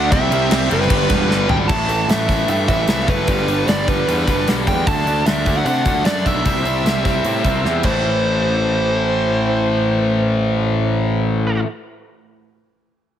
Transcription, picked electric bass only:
0.12 0.29 C2 loud
0.31 0.49 C2 loud
0.50 0.68 C2 loud
0.70 0.88 F#1 medium
0.90 1.08 G1 loud
1.10 1.28 E1 loud
1.29 1.47 G1 loud
1.49 1.67 G#1 medium
1.69 2.05 A1 medium
2.08 2.44 A1 medium
2.48 2.66 G2 loud
2.69 2.86 A1 medium
2.88 3.06 C2 medium
3.08 3.26 F#1 medium
3.28 3.63 G1 loud
3.67 4.02 G1 medium
4.07 4.25 E2 medium
4.27 4.45 G1 medium
4.46 4.64 B1 medium
4.67 4.85 E2 medium
4.87 5.22 D2 medium
5.26 5.61 D2 medium
5.65 5.83 C3 loud
5.86 6.03 D2 medium
6.05 6.23 F#2 medium
6.26 6.43 B1 medium
6.46 6.81 C2 medium
6.84 7.20 C2 medium
7.24 7.42 A2 medium
7.44 7.62 C2 medium
7.63 7.82 E2 medium
7.84 11.59 A1 medium

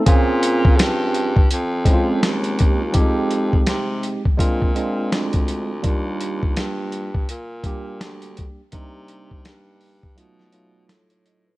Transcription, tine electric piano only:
0.06 1.32 C4 medium
0.06 1.32 C#4 medium
0.06 1.32 F4 loud
0.06 1.31 G#4 medium
1.85 2.81 G#3 medium
1.85 2.82 C4 medium
1.85 2.82 C#4 medium
1.85 1.95 E4 medium
1.94 2.26 F4 medium
2.22 2.56 G#4 medium
2.58 2.79 G4 medium
2.79 3.14 F4 medium
2.93 3.01 G3 medium
2.93 4.19 C4 medium
2.93 4.20 D#4 medium
2.93 4.20 G4 loud
2.99 4.23 G#3 medium
4.37 4.70 G#3 medium
4.37 4.70 C4 medium
4.37 4.71 D4 medium
4.37 4.71 F4 medium
4.75 5.71 G#3 medium
4.75 5.71 C4 medium
4.75 5.71 D4 medium
4.75 5.72 F4 medium
5.83 7.09 G3 medium
5.83 7.09 A#3 medium
5.83 7.10 D4 medium
5.83 7.10 F4 medium
7.64 8.60 G3 medium
7.64 8.60 A#3 medium
7.64 8.61 D4 medium
7.64 8.61 G4 medium
8.72 9.98 G3 medium
8.72 9.99 A#3 medium
8.72 9.99 D4 medium
8.72 9.99 D#4 medium
10.15 10.48 F#3 medium
10.15 10.49 A3 medium
10.15 10.49 D#4 medium
10.15 10.49 F4 medium
10.52 11.48 F#3 medium
10.52 11.49 A3 medium
10.52 11.49 D#4 medium
10.52 11.49 F4 medium
10.90 11.10 A4 medium
11.11 11.25 C#5 medium
11.26 11.47 D#5 medium
11.46 11.57 B4 medium

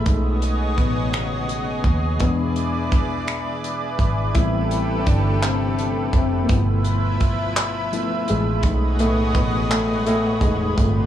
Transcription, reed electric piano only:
0.00 0.39 G#4 medium
0.07 1.10 G#3 medium
0.07 1.10 A3 soft
0.07 1.10 C#4 soft
0.07 1.10 D#4 medium
0.78 1.12 B2 medium
0.78 1.15 B3 medium
1.14 2.18 C#3 medium
1.14 2.24 C#4 medium
2.21 3.96 B2 medium
2.21 3.24 G#3 soft
2.21 3.24 B3 medium
2.21 3.25 D4 medium
4.35 4.96 E3 medium
4.35 6.46 G3 soft
4.35 6.46 B3 soft
4.35 5.41 C4 medium
4.35 5.01 E4 loud
4.99 5.06 C#4 medium
5.06 5.24 D3 medium
5.06 5.22 D4 medium
5.42 6.11 C3 medium
5.42 6.13 C4 medium
6.14 6.41 C3 medium
6.14 6.43 C4 medium
6.43 6.50 A#3 medium
6.50 7.27 B2 medium
6.50 6.97 F3 medium
6.50 6.97 A3 soft
6.50 6.97 B3 medium
6.50 6.97 E4 medium
7.92 8.24 F3 medium
7.92 8.25 A3 soft
7.92 8.25 B3 soft
7.92 8.25 E4 medium
8.30 8.63 G#3 medium
8.30 8.96 G#4 medium
8.64 9.11 G#3 medium
8.64 8.99 A3 soft
8.64 9.12 C#4 medium
8.64 9.12 D#4 medium
9.00 9.33 A2 medium
9.00 9.36 A3 medium
9.36 9.69 B2 medium
9.36 9.68 B3 medium
9.71 9.98 A2 medium
9.71 10.00 A3 loud
9.98 10.06 G#3 medium
10.07 10.41 A2 medium
10.07 10.41 A3 medium
10.41 10.69 G#3 medium
10.41 10.74 A3 soft
10.41 10.74 C#4 soft
10.41 10.75 D#4 medium
10.41 10.69 G#4 medium
10.70 10.77 G#3 medium
10.77 11.06 A2 medium
10.77 11.06 A3 medium
10.77 11.06 C4 soft
10.77 11.06 F4 medium

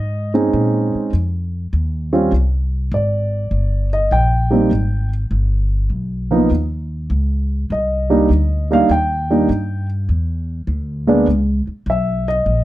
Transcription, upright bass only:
0.00 0.52 G#2 medium
0.53 0.91 A#2 medium
0.95 muted upright bass stroke soft
1.13 1.71 F2 medium
1.73 2.31 D#2 medium
2.32 2.90 C2 medium
2.92 3.50 G#1 medium
3.51 4.10 G1 medium
4.11 4.69 A#1 medium
4.71 5.29 G#1 medium
5.31 5.89 G1 medium
5.90 6.48 B1 medium
6.51 7.09 D#2 medium
7.10 7.68 C#2 medium
7.70 8.28 C2 medium
8.30 8.88 D2 medium
8.89 9.47 D#2 medium
9.49 10.07 G2 medium
10.09 10.66 E2 medium
10.67 11.25 D2 medium
11.27 11.65 C#2 medium
11.67 muted upright bass stroke soft
11.86 12.44 B1 medium
12.46 12.64 A#1 medium

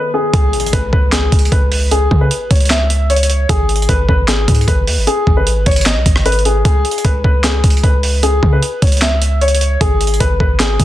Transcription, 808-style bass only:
0.34 0.52 C#2 loud
0.73 0.92 C#2 loud
0.93 1.31 C#2 loud
1.32 1.51 C#2 loud
1.52 2.09 C#2 loud
2.11 2.30 C#3 loud
2.51 3.45 C#2 loud
3.49 3.87 G#1 loud
3.89 4.08 G#1 loud
4.09 4.46 G#1 loud
4.48 4.67 G#2 loud
4.68 4.89 G#1 loud
4.87 4.99 D#2 medium
4.97 5.07 G#1 medium
5.27 5.48 G#1 loud
5.47 5.58 A1 loud
5.57 5.66 G#1 loud
5.66 5.98 G#1 loud
5.96 6.05 B1 loud
6.06 6.63 G#1 loud
6.65 6.84 C#2 loud
7.05 7.24 C#2 loud
7.24 7.62 C#2 loud
7.64 7.83 C#2 loud
7.84 8.40 C#2 loud
8.43 8.62 C#3 loud
8.82 9.77 C#2 loud
9.81 10.19 G#1 loud
10.20 10.39 G#1 loud
10.40 10.78 G#1 loud
10.80 10.85 G#2 loud

